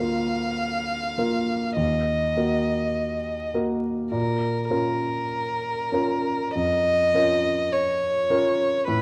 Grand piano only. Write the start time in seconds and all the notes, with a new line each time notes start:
Already playing: D2
0.00 A#3 F4 A#4
1.18 A#3 F4 A#4
1.76 D#2
2.37 A#3 F#4 A#4
3.54 A#3 F#4 A#4
4.12 A#2
4.70 C#4 F4 A#4
5.92 C#4 F4 A#4
6.55 F2
7.14 C#4 F4 A#4
8.30 C#4 F4 A#4
8.88 A2